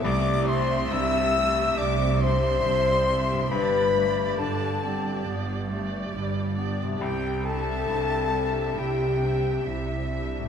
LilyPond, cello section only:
\new Staff \with { instrumentName = "Cello section" } { \clef bass \time 4/4 \key c \major \tempo 4 = 69 c4 c4 c4 c4 | g,4 g,4 g,4 g,4 | c4 c4 c4 c4 | }